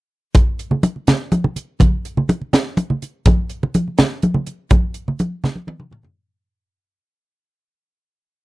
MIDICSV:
0, 0, Header, 1, 2, 480
1, 0, Start_track
1, 0, Tempo, 484653
1, 349, Time_signature, 6, 3, 24, 8
1, 8365, End_track
2, 0, Start_track
2, 0, Title_t, "Drums"
2, 343, Note_on_c, 9, 63, 84
2, 343, Note_on_c, 9, 64, 80
2, 347, Note_on_c, 9, 42, 77
2, 350, Note_on_c, 9, 36, 99
2, 442, Note_off_c, 9, 63, 0
2, 442, Note_off_c, 9, 64, 0
2, 446, Note_off_c, 9, 42, 0
2, 449, Note_off_c, 9, 36, 0
2, 587, Note_on_c, 9, 42, 50
2, 686, Note_off_c, 9, 42, 0
2, 703, Note_on_c, 9, 64, 68
2, 802, Note_off_c, 9, 64, 0
2, 824, Note_on_c, 9, 63, 79
2, 824, Note_on_c, 9, 64, 25
2, 827, Note_on_c, 9, 42, 57
2, 923, Note_off_c, 9, 63, 0
2, 923, Note_off_c, 9, 64, 0
2, 926, Note_off_c, 9, 42, 0
2, 951, Note_on_c, 9, 64, 25
2, 1050, Note_off_c, 9, 64, 0
2, 1063, Note_on_c, 9, 42, 78
2, 1069, Note_on_c, 9, 64, 85
2, 1071, Note_on_c, 9, 38, 89
2, 1162, Note_off_c, 9, 42, 0
2, 1168, Note_off_c, 9, 64, 0
2, 1170, Note_off_c, 9, 38, 0
2, 1305, Note_on_c, 9, 63, 84
2, 1307, Note_on_c, 9, 42, 58
2, 1404, Note_off_c, 9, 63, 0
2, 1406, Note_off_c, 9, 42, 0
2, 1429, Note_on_c, 9, 64, 68
2, 1528, Note_off_c, 9, 64, 0
2, 1546, Note_on_c, 9, 64, 27
2, 1548, Note_on_c, 9, 42, 61
2, 1645, Note_off_c, 9, 64, 0
2, 1647, Note_off_c, 9, 42, 0
2, 1782, Note_on_c, 9, 63, 90
2, 1782, Note_on_c, 9, 64, 84
2, 1787, Note_on_c, 9, 42, 83
2, 1789, Note_on_c, 9, 36, 90
2, 1881, Note_off_c, 9, 63, 0
2, 1881, Note_off_c, 9, 64, 0
2, 1887, Note_off_c, 9, 42, 0
2, 1888, Note_off_c, 9, 36, 0
2, 2031, Note_on_c, 9, 42, 59
2, 2130, Note_off_c, 9, 42, 0
2, 2152, Note_on_c, 9, 64, 67
2, 2251, Note_off_c, 9, 64, 0
2, 2269, Note_on_c, 9, 63, 84
2, 2269, Note_on_c, 9, 64, 28
2, 2272, Note_on_c, 9, 42, 54
2, 2368, Note_off_c, 9, 63, 0
2, 2368, Note_off_c, 9, 64, 0
2, 2371, Note_off_c, 9, 42, 0
2, 2391, Note_on_c, 9, 64, 26
2, 2490, Note_off_c, 9, 64, 0
2, 2507, Note_on_c, 9, 64, 82
2, 2509, Note_on_c, 9, 42, 75
2, 2517, Note_on_c, 9, 38, 96
2, 2606, Note_off_c, 9, 64, 0
2, 2608, Note_off_c, 9, 42, 0
2, 2616, Note_off_c, 9, 38, 0
2, 2745, Note_on_c, 9, 63, 86
2, 2750, Note_on_c, 9, 42, 56
2, 2844, Note_off_c, 9, 63, 0
2, 2849, Note_off_c, 9, 42, 0
2, 2873, Note_on_c, 9, 64, 59
2, 2972, Note_off_c, 9, 64, 0
2, 2993, Note_on_c, 9, 42, 55
2, 2996, Note_on_c, 9, 64, 26
2, 3092, Note_off_c, 9, 42, 0
2, 3095, Note_off_c, 9, 64, 0
2, 3224, Note_on_c, 9, 42, 67
2, 3226, Note_on_c, 9, 36, 101
2, 3239, Note_on_c, 9, 63, 83
2, 3239, Note_on_c, 9, 64, 85
2, 3323, Note_off_c, 9, 42, 0
2, 3325, Note_off_c, 9, 36, 0
2, 3338, Note_off_c, 9, 63, 0
2, 3338, Note_off_c, 9, 64, 0
2, 3462, Note_on_c, 9, 42, 55
2, 3561, Note_off_c, 9, 42, 0
2, 3597, Note_on_c, 9, 64, 63
2, 3696, Note_off_c, 9, 64, 0
2, 3707, Note_on_c, 9, 42, 59
2, 3712, Note_on_c, 9, 63, 85
2, 3712, Note_on_c, 9, 64, 28
2, 3806, Note_off_c, 9, 42, 0
2, 3811, Note_off_c, 9, 63, 0
2, 3811, Note_off_c, 9, 64, 0
2, 3839, Note_on_c, 9, 64, 26
2, 3938, Note_off_c, 9, 64, 0
2, 3940, Note_on_c, 9, 42, 68
2, 3948, Note_on_c, 9, 38, 96
2, 3951, Note_on_c, 9, 64, 72
2, 4039, Note_off_c, 9, 42, 0
2, 4047, Note_off_c, 9, 38, 0
2, 4050, Note_off_c, 9, 64, 0
2, 4183, Note_on_c, 9, 42, 54
2, 4191, Note_on_c, 9, 63, 75
2, 4282, Note_off_c, 9, 42, 0
2, 4290, Note_off_c, 9, 63, 0
2, 4302, Note_on_c, 9, 64, 62
2, 4401, Note_off_c, 9, 64, 0
2, 4422, Note_on_c, 9, 42, 59
2, 4429, Note_on_c, 9, 64, 25
2, 4521, Note_off_c, 9, 42, 0
2, 4528, Note_off_c, 9, 64, 0
2, 4660, Note_on_c, 9, 42, 74
2, 4663, Note_on_c, 9, 36, 104
2, 4666, Note_on_c, 9, 63, 76
2, 4666, Note_on_c, 9, 64, 81
2, 4759, Note_off_c, 9, 42, 0
2, 4762, Note_off_c, 9, 36, 0
2, 4765, Note_off_c, 9, 63, 0
2, 4765, Note_off_c, 9, 64, 0
2, 4894, Note_on_c, 9, 42, 57
2, 4993, Note_off_c, 9, 42, 0
2, 5031, Note_on_c, 9, 64, 63
2, 5130, Note_off_c, 9, 64, 0
2, 5142, Note_on_c, 9, 42, 61
2, 5148, Note_on_c, 9, 63, 83
2, 5241, Note_off_c, 9, 42, 0
2, 5247, Note_off_c, 9, 63, 0
2, 5385, Note_on_c, 9, 64, 82
2, 5390, Note_on_c, 9, 38, 53
2, 5484, Note_off_c, 9, 64, 0
2, 5489, Note_off_c, 9, 38, 0
2, 5501, Note_on_c, 9, 63, 50
2, 5600, Note_off_c, 9, 63, 0
2, 5618, Note_on_c, 9, 63, 56
2, 5625, Note_on_c, 9, 48, 71
2, 5717, Note_off_c, 9, 63, 0
2, 5724, Note_off_c, 9, 48, 0
2, 5740, Note_on_c, 9, 63, 55
2, 5741, Note_on_c, 9, 47, 61
2, 5839, Note_off_c, 9, 63, 0
2, 5840, Note_off_c, 9, 47, 0
2, 5856, Note_on_c, 9, 64, 67
2, 5868, Note_on_c, 9, 45, 84
2, 5955, Note_off_c, 9, 64, 0
2, 5967, Note_off_c, 9, 45, 0
2, 5973, Note_on_c, 9, 64, 68
2, 5987, Note_on_c, 9, 43, 80
2, 6072, Note_off_c, 9, 64, 0
2, 6086, Note_off_c, 9, 43, 0
2, 8365, End_track
0, 0, End_of_file